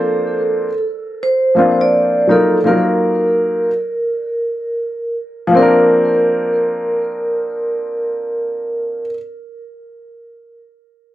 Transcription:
0, 0, Header, 1, 3, 480
1, 0, Start_track
1, 0, Key_signature, -2, "major"
1, 0, Tempo, 722892
1, 1761, Time_signature, 4, 2, 24, 8
1, 7403, End_track
2, 0, Start_track
2, 0, Title_t, "Vibraphone"
2, 0, Program_c, 0, 11
2, 0, Note_on_c, 0, 69, 76
2, 544, Note_off_c, 0, 69, 0
2, 817, Note_on_c, 0, 72, 93
2, 1203, Note_on_c, 0, 74, 98
2, 1208, Note_off_c, 0, 72, 0
2, 1505, Note_off_c, 0, 74, 0
2, 1535, Note_on_c, 0, 69, 83
2, 1772, Note_on_c, 0, 70, 81
2, 1775, Note_off_c, 0, 69, 0
2, 3420, Note_off_c, 0, 70, 0
2, 3698, Note_on_c, 0, 70, 85
2, 6050, Note_off_c, 0, 70, 0
2, 7403, End_track
3, 0, Start_track
3, 0, Title_t, "Upright piano"
3, 0, Program_c, 1, 0
3, 0, Note_on_c, 1, 53, 78
3, 0, Note_on_c, 1, 58, 71
3, 0, Note_on_c, 1, 60, 72
3, 0, Note_on_c, 1, 62, 71
3, 0, Note_on_c, 1, 72, 83
3, 445, Note_off_c, 1, 53, 0
3, 449, Note_off_c, 1, 58, 0
3, 452, Note_off_c, 1, 60, 0
3, 455, Note_off_c, 1, 62, 0
3, 480, Note_off_c, 1, 72, 0
3, 1027, Note_on_c, 1, 53, 65
3, 1035, Note_on_c, 1, 58, 66
3, 1041, Note_on_c, 1, 60, 63
3, 1047, Note_on_c, 1, 62, 61
3, 1054, Note_on_c, 1, 65, 80
3, 1505, Note_off_c, 1, 58, 0
3, 1509, Note_on_c, 1, 54, 60
3, 1515, Note_on_c, 1, 58, 56
3, 1518, Note_off_c, 1, 65, 0
3, 1521, Note_on_c, 1, 63, 61
3, 1528, Note_on_c, 1, 65, 56
3, 1532, Note_on_c, 1, 70, 74
3, 1700, Note_off_c, 1, 54, 0
3, 1702, Note_off_c, 1, 58, 0
3, 1706, Note_off_c, 1, 63, 0
3, 1709, Note_off_c, 1, 65, 0
3, 1711, Note_off_c, 1, 70, 0
3, 1717, Note_off_c, 1, 53, 0
3, 1724, Note_off_c, 1, 60, 0
3, 1727, Note_off_c, 1, 62, 0
3, 1748, Note_on_c, 1, 53, 52
3, 1753, Note_on_c, 1, 58, 64
3, 1760, Note_on_c, 1, 63, 57
3, 1765, Note_on_c, 1, 65, 60
3, 1773, Note_on_c, 1, 70, 76
3, 1790, Note_on_c, 1, 54, 67
3, 1808, Note_off_c, 1, 53, 0
3, 2440, Note_off_c, 1, 58, 0
3, 2444, Note_off_c, 1, 63, 0
3, 2446, Note_off_c, 1, 65, 0
3, 2450, Note_off_c, 1, 70, 0
3, 2458, Note_off_c, 1, 54, 0
3, 3634, Note_on_c, 1, 53, 85
3, 3659, Note_on_c, 1, 58, 75
3, 3684, Note_on_c, 1, 60, 75
3, 3708, Note_on_c, 1, 62, 73
3, 3733, Note_on_c, 1, 70, 87
3, 5986, Note_off_c, 1, 53, 0
3, 6011, Note_off_c, 1, 58, 0
3, 6036, Note_off_c, 1, 60, 0
3, 6060, Note_off_c, 1, 62, 0
3, 6085, Note_off_c, 1, 70, 0
3, 7403, End_track
0, 0, End_of_file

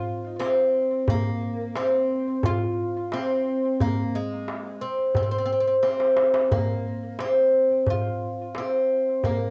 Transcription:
0, 0, Header, 1, 3, 480
1, 0, Start_track
1, 0, Tempo, 680272
1, 757, Time_signature, 4, 2, 24, 8
1, 6705, End_track
2, 0, Start_track
2, 0, Title_t, "Oud"
2, 0, Program_c, 0, 24
2, 0, Note_on_c, 0, 65, 109
2, 279, Note_on_c, 0, 60, 88
2, 288, Note_off_c, 0, 65, 0
2, 772, Note_off_c, 0, 60, 0
2, 774, Note_on_c, 0, 58, 95
2, 1242, Note_off_c, 0, 58, 0
2, 1244, Note_on_c, 0, 60, 89
2, 1732, Note_on_c, 0, 65, 103
2, 1735, Note_off_c, 0, 60, 0
2, 2210, Note_on_c, 0, 60, 94
2, 2218, Note_off_c, 0, 65, 0
2, 2686, Note_off_c, 0, 60, 0
2, 2689, Note_on_c, 0, 58, 94
2, 2930, Note_off_c, 0, 58, 0
2, 2930, Note_on_c, 0, 56, 87
2, 3396, Note_on_c, 0, 60, 80
2, 3417, Note_off_c, 0, 56, 0
2, 3635, Note_off_c, 0, 60, 0
2, 3644, Note_on_c, 0, 60, 85
2, 3678, Note_off_c, 0, 60, 0
2, 3687, Note_on_c, 0, 60, 63
2, 3739, Note_off_c, 0, 60, 0
2, 3748, Note_on_c, 0, 60, 78
2, 3789, Note_off_c, 0, 60, 0
2, 3798, Note_on_c, 0, 60, 66
2, 3840, Note_off_c, 0, 60, 0
2, 3849, Note_on_c, 0, 60, 77
2, 3889, Note_off_c, 0, 60, 0
2, 3897, Note_on_c, 0, 60, 59
2, 3945, Note_off_c, 0, 60, 0
2, 3953, Note_on_c, 0, 60, 71
2, 3995, Note_off_c, 0, 60, 0
2, 4003, Note_on_c, 0, 60, 59
2, 4059, Note_off_c, 0, 60, 0
2, 4112, Note_on_c, 0, 60, 80
2, 4596, Note_off_c, 0, 60, 0
2, 4599, Note_on_c, 0, 58, 81
2, 5080, Note_off_c, 0, 58, 0
2, 5083, Note_on_c, 0, 60, 83
2, 5575, Note_off_c, 0, 60, 0
2, 5576, Note_on_c, 0, 65, 98
2, 6053, Note_on_c, 0, 60, 85
2, 6061, Note_off_c, 0, 65, 0
2, 6522, Note_off_c, 0, 60, 0
2, 6525, Note_on_c, 0, 58, 84
2, 6705, Note_off_c, 0, 58, 0
2, 6705, End_track
3, 0, Start_track
3, 0, Title_t, "Darbuka"
3, 285, Note_on_c, 9, 63, 70
3, 355, Note_off_c, 9, 63, 0
3, 759, Note_on_c, 9, 64, 94
3, 830, Note_off_c, 9, 64, 0
3, 995, Note_on_c, 9, 62, 26
3, 1066, Note_off_c, 9, 62, 0
3, 1238, Note_on_c, 9, 63, 72
3, 1309, Note_off_c, 9, 63, 0
3, 1476, Note_on_c, 9, 62, 24
3, 1547, Note_off_c, 9, 62, 0
3, 1601, Note_on_c, 9, 62, 24
3, 1671, Note_off_c, 9, 62, 0
3, 1716, Note_on_c, 9, 64, 84
3, 1787, Note_off_c, 9, 64, 0
3, 2201, Note_on_c, 9, 63, 68
3, 2272, Note_off_c, 9, 63, 0
3, 2684, Note_on_c, 9, 64, 87
3, 2754, Note_off_c, 9, 64, 0
3, 2924, Note_on_c, 9, 62, 23
3, 2995, Note_off_c, 9, 62, 0
3, 3161, Note_on_c, 9, 63, 62
3, 3232, Note_off_c, 9, 63, 0
3, 3407, Note_on_c, 9, 62, 24
3, 3477, Note_off_c, 9, 62, 0
3, 3519, Note_on_c, 9, 62, 27
3, 3590, Note_off_c, 9, 62, 0
3, 3632, Note_on_c, 9, 64, 79
3, 3702, Note_off_c, 9, 64, 0
3, 3755, Note_on_c, 9, 62, 26
3, 3826, Note_off_c, 9, 62, 0
3, 3872, Note_on_c, 9, 62, 24
3, 3943, Note_off_c, 9, 62, 0
3, 4112, Note_on_c, 9, 63, 54
3, 4182, Note_off_c, 9, 63, 0
3, 4233, Note_on_c, 9, 62, 66
3, 4304, Note_off_c, 9, 62, 0
3, 4350, Note_on_c, 9, 63, 74
3, 4421, Note_off_c, 9, 63, 0
3, 4473, Note_on_c, 9, 62, 84
3, 4543, Note_off_c, 9, 62, 0
3, 4597, Note_on_c, 9, 64, 87
3, 4667, Note_off_c, 9, 64, 0
3, 4838, Note_on_c, 9, 62, 26
3, 4908, Note_off_c, 9, 62, 0
3, 5072, Note_on_c, 9, 63, 68
3, 5143, Note_off_c, 9, 63, 0
3, 5314, Note_on_c, 9, 62, 26
3, 5384, Note_off_c, 9, 62, 0
3, 5432, Note_on_c, 9, 62, 27
3, 5503, Note_off_c, 9, 62, 0
3, 5550, Note_on_c, 9, 64, 79
3, 5621, Note_off_c, 9, 64, 0
3, 6032, Note_on_c, 9, 63, 67
3, 6102, Note_off_c, 9, 63, 0
3, 6517, Note_on_c, 9, 64, 78
3, 6588, Note_off_c, 9, 64, 0
3, 6705, End_track
0, 0, End_of_file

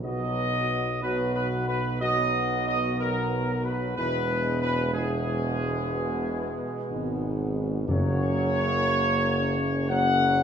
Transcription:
0, 0, Header, 1, 6, 480
1, 0, Start_track
1, 0, Tempo, 983607
1, 14, Time_signature, 4, 2, 24, 8
1, 4333, Tempo, 1010101
1, 5070, End_track
2, 0, Start_track
2, 0, Title_t, "Trumpet section"
2, 0, Program_c, 0, 61
2, 16, Note_on_c, 0, 75, 90
2, 480, Note_off_c, 0, 75, 0
2, 499, Note_on_c, 0, 71, 73
2, 649, Note_off_c, 0, 71, 0
2, 655, Note_on_c, 0, 71, 73
2, 807, Note_off_c, 0, 71, 0
2, 815, Note_on_c, 0, 71, 69
2, 968, Note_off_c, 0, 71, 0
2, 976, Note_on_c, 0, 75, 87
2, 1282, Note_off_c, 0, 75, 0
2, 1303, Note_on_c, 0, 75, 79
2, 1453, Note_off_c, 0, 75, 0
2, 1461, Note_on_c, 0, 70, 76
2, 1762, Note_off_c, 0, 70, 0
2, 1777, Note_on_c, 0, 71, 67
2, 1926, Note_off_c, 0, 71, 0
2, 1932, Note_on_c, 0, 71, 85
2, 2234, Note_off_c, 0, 71, 0
2, 2248, Note_on_c, 0, 71, 85
2, 2400, Note_off_c, 0, 71, 0
2, 2405, Note_on_c, 0, 68, 78
2, 3588, Note_off_c, 0, 68, 0
2, 3852, Note_on_c, 0, 73, 99
2, 4795, Note_off_c, 0, 73, 0
2, 4815, Note_on_c, 0, 78, 94
2, 5070, Note_off_c, 0, 78, 0
2, 5070, End_track
3, 0, Start_track
3, 0, Title_t, "French horn section"
3, 0, Program_c, 1, 60
3, 9, Note_on_c, 1, 59, 55
3, 13, Note_on_c, 1, 66, 55
3, 477, Note_off_c, 1, 59, 0
3, 479, Note_off_c, 1, 66, 0
3, 500, Note_on_c, 1, 59, 54
3, 503, Note_on_c, 1, 66, 54
3, 963, Note_off_c, 1, 59, 0
3, 965, Note_off_c, 1, 66, 0
3, 983, Note_on_c, 1, 59, 62
3, 983, Note_on_c, 1, 66, 60
3, 1923, Note_off_c, 1, 59, 0
3, 1923, Note_off_c, 1, 66, 0
3, 1940, Note_on_c, 1, 59, 60
3, 1942, Note_on_c, 1, 64, 60
3, 2396, Note_off_c, 1, 59, 0
3, 2397, Note_off_c, 1, 64, 0
3, 2423, Note_on_c, 1, 64, 64
3, 2426, Note_on_c, 1, 59, 66
3, 3287, Note_off_c, 1, 64, 0
3, 3369, Note_on_c, 1, 63, 64
3, 3829, Note_off_c, 1, 63, 0
3, 3837, Note_off_c, 1, 59, 0
3, 3843, Note_on_c, 1, 61, 66
3, 3847, Note_on_c, 1, 58, 71
3, 4791, Note_off_c, 1, 61, 0
3, 4793, Note_off_c, 1, 58, 0
3, 4814, Note_on_c, 1, 58, 66
3, 4815, Note_on_c, 1, 61, 69
3, 5070, Note_off_c, 1, 58, 0
3, 5070, Note_off_c, 1, 61, 0
3, 5070, End_track
4, 0, Start_track
4, 0, Title_t, "Trombone section"
4, 0, Program_c, 2, 61
4, 12, Note_on_c, 2, 47, 59
4, 15, Note_on_c, 2, 54, 57
4, 420, Note_off_c, 2, 47, 0
4, 420, Note_off_c, 2, 54, 0
4, 503, Note_on_c, 2, 47, 55
4, 505, Note_on_c, 2, 54, 57
4, 965, Note_off_c, 2, 47, 0
4, 966, Note_off_c, 2, 54, 0
4, 978, Note_on_c, 2, 47, 63
4, 980, Note_on_c, 2, 54, 61
4, 1920, Note_off_c, 2, 47, 0
4, 1921, Note_off_c, 2, 54, 0
4, 1937, Note_on_c, 2, 56, 64
4, 1940, Note_on_c, 2, 47, 63
4, 2396, Note_off_c, 2, 47, 0
4, 2399, Note_off_c, 2, 56, 0
4, 2405, Note_on_c, 2, 47, 66
4, 2405, Note_on_c, 2, 56, 66
4, 3826, Note_off_c, 2, 47, 0
4, 3826, Note_off_c, 2, 56, 0
4, 3843, Note_on_c, 2, 54, 73
4, 3845, Note_on_c, 2, 42, 73
4, 4729, Note_off_c, 2, 42, 0
4, 4729, Note_off_c, 2, 54, 0
4, 4810, Note_on_c, 2, 54, 68
4, 4812, Note_on_c, 2, 42, 69
4, 5070, Note_off_c, 2, 42, 0
4, 5070, Note_off_c, 2, 54, 0
4, 5070, End_track
5, 0, Start_track
5, 0, Title_t, "Timpani"
5, 0, Program_c, 3, 47
5, 3848, Note_on_c, 3, 42, 72
5, 4551, Note_off_c, 3, 42, 0
5, 5070, End_track
6, 0, Start_track
6, 0, Title_t, "Tuba"
6, 0, Program_c, 4, 58
6, 12, Note_on_c, 4, 35, 60
6, 1938, Note_off_c, 4, 35, 0
6, 1941, Note_on_c, 4, 28, 65
6, 3221, Note_off_c, 4, 28, 0
6, 3372, Note_on_c, 4, 32, 65
6, 3847, Note_on_c, 4, 30, 69
6, 3854, Note_off_c, 4, 32, 0
6, 5070, Note_off_c, 4, 30, 0
6, 5070, End_track
0, 0, End_of_file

